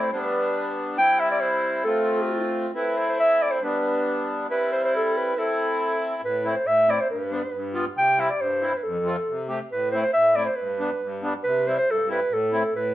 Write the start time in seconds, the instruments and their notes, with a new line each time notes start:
Already playing: accordion A3 C4 E4
0.02 clarinet C5
0.12 accordion G3 B3 D4, clarinet B4
0.97 accordion G3 C4 E4, clarinet G5
1.20 clarinet E5
1.31 clarinet D5
1.41 clarinet C5
1.84 accordion A3 C4 F4, clarinet A4
2.74 accordion A3 C4 E4, clarinet B4
2.97 clarinet C5
3.09 clarinet C5
3.20 clarinet E5
3.42 clarinet D5
3.51 clarinet C5
3.62 accordion G3 B3 D4, clarinet B4
4.48 accordion G3 C4 E4, clarinet B4
4.72 clarinet C5
4.85 clarinet C5
4.96 clarinet A4
5.17 clarinet B4
5.35 accordion A3 C4 E4, clarinet A4
6.22 accordion A2, clarinet B4
6.44 accordion A3 C4 E4, clarinet C5
6.56 clarinet C5
6.66 accordion A2, clarinet E5
6.88 accordion A3 C4 E4, clarinet D5
7.01 clarinet C5
7.10 accordion G2, clarinet B4
7.31 accordion G3 B3 D4
7.53 accordion G2
7.73 accordion G3 B3 F4
7.96 accordion C3, clarinet G5
8.17 accordion G3 C4 E4, clarinet E5
8.30 clarinet D5
8.40 accordion G2, clarinet C5
8.61 accordion G3 C4 E4
8.77 clarinet B4
8.83 accordion F2, clarinet A4
9.05 accordion A3 C4 F4
9.28 accordion C3
9.48 accordion A3 C4 G4
9.72 accordion A2, clarinet B4
9.91 accordion A3 C4 E4, clarinet C5
10.03 clarinet C5
10.13 accordion A2, clarinet E5
10.36 accordion A3 C4 E4, clarinet D5
10.46 clarinet C5
10.56 accordion G2, clarinet B4
10.79 accordion G3 B3 D4
11.02 accordion G2
11.22 accordion G3 B3 D4
11.44 accordion C3, clarinet B4
11.67 accordion G3 C4 E4, clarinet C5
11.78 clarinet C5
11.89 accordion G2, clarinet A4
12.08 accordion G3 C4 E4, clarinet B4
12.30 accordion A2, clarinet A4
12.52 accordion A3 C4 E4
12.73 accordion A2, clarinet B4